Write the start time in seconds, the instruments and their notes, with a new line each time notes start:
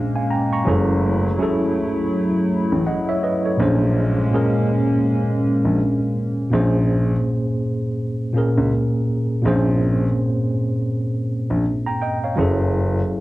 Already playing: tine electric piano A#2 A#3 C#4 G#4 C5, ambient pad G#3 A#3 C#4
0.16 tine electric piano F5 G#5
0.30 tine electric piano G5 A#5
0.52 tine electric piano A#5 C#6
0.64 grand piano F#1, tine electric piano F#3 C#4 E4 G#4, ambient pad F#3 A3 E4
0.69 tine electric piano A4
1.37 tine electric piano F#3 C#4 E4 G#4
1.43 tine electric piano A4
2.72 grand piano A1
2.86 tine electric piano D#5 F#5
3.09 tine electric piano C#5 E5
3.23 tine electric piano B4 D#5
3.45 tine electric piano A4 C#5
3.57 grand piano A#1, tine electric piano A#2 A#3 C#4, ambient pad G#3 A#3 C#4
3.61 tine electric piano G#4 C5
4.31 tine electric piano A#2 A#3 C#4 G#4
4.36 tine electric piano A#4
5.65 grand piano A#1
6.50 grand piano A#1, tine electric piano A#2 A#3 C4 G#4
6.55 tine electric piano C5
6.59 tine electric piano C#4
8.33 tine electric piano A#2 A#3 C#4 G#4
8.38 tine electric piano A#4
8.58 grand piano C#2
9.42 grand piano A#1, tine electric piano A#2 A#3 C4 G#4
9.48 tine electric piano C5
9.52 tine electric piano C#4
11.50 grand piano A#1
11.86 tine electric piano G5 A#5
12.02 tine electric piano D#5 G5
12.24 tine electric piano C#5 F5
12.36 grand piano F#1, tine electric piano F#3 C#4 E4 G#4
12.41 tine electric piano A4